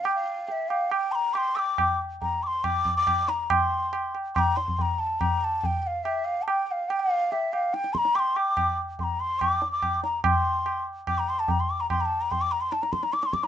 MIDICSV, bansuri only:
0, 0, Header, 1, 2, 480
1, 0, Start_track
1, 0, Tempo, 431034
1, 48, Time_signature, 4, 2, 24, 8
1, 4368, Tempo, 424028
1, 8208, Tempo, 414651
1, 15338, End_track
2, 0, Start_track
2, 0, Title_t, "Bansuri"
2, 0, Program_c, 0, 73
2, 50, Note_on_c, 0, 79, 88
2, 163, Note_off_c, 0, 79, 0
2, 170, Note_on_c, 0, 77, 94
2, 527, Note_off_c, 0, 77, 0
2, 527, Note_on_c, 0, 77, 74
2, 577, Note_on_c, 0, 76, 81
2, 588, Note_off_c, 0, 77, 0
2, 763, Note_on_c, 0, 77, 86
2, 779, Note_off_c, 0, 76, 0
2, 1006, Note_on_c, 0, 79, 97
2, 1023, Note_off_c, 0, 77, 0
2, 1245, Note_on_c, 0, 84, 89
2, 1262, Note_off_c, 0, 79, 0
2, 1282, Note_on_c, 0, 82, 97
2, 1293, Note_off_c, 0, 84, 0
2, 1488, Note_on_c, 0, 86, 91
2, 1505, Note_off_c, 0, 82, 0
2, 1530, Note_on_c, 0, 84, 99
2, 1541, Note_off_c, 0, 86, 0
2, 1732, Note_on_c, 0, 88, 92
2, 1749, Note_off_c, 0, 84, 0
2, 1770, Note_on_c, 0, 86, 100
2, 1781, Note_off_c, 0, 88, 0
2, 2215, Note_off_c, 0, 86, 0
2, 2472, Note_on_c, 0, 82, 81
2, 2708, Note_on_c, 0, 86, 85
2, 2725, Note_off_c, 0, 82, 0
2, 2750, Note_on_c, 0, 84, 93
2, 2762, Note_off_c, 0, 86, 0
2, 2943, Note_on_c, 0, 86, 103
2, 2960, Note_off_c, 0, 84, 0
2, 3299, Note_off_c, 0, 86, 0
2, 3305, Note_on_c, 0, 86, 100
2, 3660, Note_on_c, 0, 82, 82
2, 3677, Note_off_c, 0, 86, 0
2, 3903, Note_on_c, 0, 84, 87
2, 3919, Note_off_c, 0, 82, 0
2, 4616, Note_off_c, 0, 84, 0
2, 4851, Note_on_c, 0, 84, 81
2, 4893, Note_on_c, 0, 82, 89
2, 4904, Note_off_c, 0, 84, 0
2, 5095, Note_on_c, 0, 84, 82
2, 5112, Note_off_c, 0, 82, 0
2, 5328, Note_off_c, 0, 84, 0
2, 5328, Note_on_c, 0, 84, 77
2, 5379, Note_on_c, 0, 82, 84
2, 5390, Note_off_c, 0, 84, 0
2, 5577, Note_on_c, 0, 81, 84
2, 5594, Note_off_c, 0, 82, 0
2, 5811, Note_on_c, 0, 82, 95
2, 5828, Note_off_c, 0, 81, 0
2, 6049, Note_off_c, 0, 82, 0
2, 6049, Note_on_c, 0, 82, 80
2, 6088, Note_on_c, 0, 81, 87
2, 6099, Note_off_c, 0, 82, 0
2, 6279, Note_off_c, 0, 81, 0
2, 6279, Note_on_c, 0, 81, 78
2, 6331, Note_on_c, 0, 79, 85
2, 6342, Note_off_c, 0, 81, 0
2, 6520, Note_off_c, 0, 79, 0
2, 6520, Note_on_c, 0, 79, 77
2, 6571, Note_on_c, 0, 77, 83
2, 6582, Note_off_c, 0, 79, 0
2, 6765, Note_on_c, 0, 76, 82
2, 6782, Note_off_c, 0, 77, 0
2, 6999, Note_on_c, 0, 77, 90
2, 7016, Note_off_c, 0, 76, 0
2, 7198, Note_on_c, 0, 81, 66
2, 7215, Note_off_c, 0, 77, 0
2, 7245, Note_off_c, 0, 81, 0
2, 7245, Note_on_c, 0, 81, 84
2, 7283, Note_on_c, 0, 79, 91
2, 7295, Note_off_c, 0, 81, 0
2, 7476, Note_off_c, 0, 79, 0
2, 7476, Note_on_c, 0, 79, 77
2, 7528, Note_on_c, 0, 77, 83
2, 7540, Note_off_c, 0, 79, 0
2, 7729, Note_on_c, 0, 79, 94
2, 7746, Note_off_c, 0, 77, 0
2, 7850, Note_on_c, 0, 77, 96
2, 7867, Note_off_c, 0, 79, 0
2, 8214, Note_on_c, 0, 76, 85
2, 8232, Note_off_c, 0, 77, 0
2, 8454, Note_on_c, 0, 77, 91
2, 8471, Note_off_c, 0, 76, 0
2, 8696, Note_on_c, 0, 79, 106
2, 8713, Note_off_c, 0, 77, 0
2, 8926, Note_on_c, 0, 84, 93
2, 8944, Note_off_c, 0, 79, 0
2, 8976, Note_on_c, 0, 82, 101
2, 8988, Note_off_c, 0, 84, 0
2, 9181, Note_on_c, 0, 86, 92
2, 9198, Note_off_c, 0, 82, 0
2, 9225, Note_on_c, 0, 84, 100
2, 9236, Note_off_c, 0, 86, 0
2, 9420, Note_on_c, 0, 86, 93
2, 9437, Note_off_c, 0, 84, 0
2, 9906, Note_off_c, 0, 86, 0
2, 10163, Note_on_c, 0, 84, 73
2, 10200, Note_on_c, 0, 82, 80
2, 10211, Note_off_c, 0, 84, 0
2, 10391, Note_on_c, 0, 84, 89
2, 10408, Note_off_c, 0, 82, 0
2, 10620, Note_on_c, 0, 86, 98
2, 10637, Note_off_c, 0, 84, 0
2, 10984, Note_off_c, 0, 86, 0
2, 10990, Note_on_c, 0, 86, 94
2, 11328, Note_off_c, 0, 86, 0
2, 11360, Note_on_c, 0, 82, 72
2, 11581, Note_off_c, 0, 82, 0
2, 11598, Note_on_c, 0, 84, 90
2, 12270, Note_off_c, 0, 84, 0
2, 12577, Note_on_c, 0, 86, 98
2, 12688, Note_on_c, 0, 82, 79
2, 12706, Note_off_c, 0, 86, 0
2, 12809, Note_on_c, 0, 84, 90
2, 12826, Note_off_c, 0, 82, 0
2, 12931, Note_on_c, 0, 81, 77
2, 12948, Note_off_c, 0, 84, 0
2, 13056, Note_on_c, 0, 82, 85
2, 13074, Note_off_c, 0, 81, 0
2, 13170, Note_on_c, 0, 84, 82
2, 13188, Note_off_c, 0, 82, 0
2, 13286, Note_on_c, 0, 86, 85
2, 13303, Note_off_c, 0, 84, 0
2, 13404, Note_on_c, 0, 82, 87
2, 13422, Note_off_c, 0, 86, 0
2, 13511, Note_off_c, 0, 82, 0
2, 13518, Note_on_c, 0, 84, 89
2, 13639, Note_on_c, 0, 82, 74
2, 13656, Note_off_c, 0, 84, 0
2, 13697, Note_on_c, 0, 81, 80
2, 13708, Note_off_c, 0, 82, 0
2, 13877, Note_on_c, 0, 82, 75
2, 13895, Note_off_c, 0, 81, 0
2, 13992, Note_on_c, 0, 84, 84
2, 14009, Note_off_c, 0, 82, 0
2, 14111, Note_on_c, 0, 86, 95
2, 14128, Note_off_c, 0, 84, 0
2, 14229, Note_on_c, 0, 82, 81
2, 14246, Note_off_c, 0, 86, 0
2, 14337, Note_on_c, 0, 84, 87
2, 14354, Note_off_c, 0, 82, 0
2, 14467, Note_on_c, 0, 81, 91
2, 14484, Note_off_c, 0, 84, 0
2, 14583, Note_on_c, 0, 82, 84
2, 14601, Note_off_c, 0, 81, 0
2, 14699, Note_on_c, 0, 84, 91
2, 14716, Note_off_c, 0, 82, 0
2, 14828, Note_on_c, 0, 82, 92
2, 14845, Note_off_c, 0, 84, 0
2, 14938, Note_on_c, 0, 86, 92
2, 14956, Note_off_c, 0, 82, 0
2, 15056, Note_on_c, 0, 84, 93
2, 15074, Note_off_c, 0, 86, 0
2, 15176, Note_on_c, 0, 86, 87
2, 15194, Note_off_c, 0, 84, 0
2, 15296, Note_on_c, 0, 82, 99
2, 15314, Note_off_c, 0, 86, 0
2, 15338, Note_off_c, 0, 82, 0
2, 15338, End_track
0, 0, End_of_file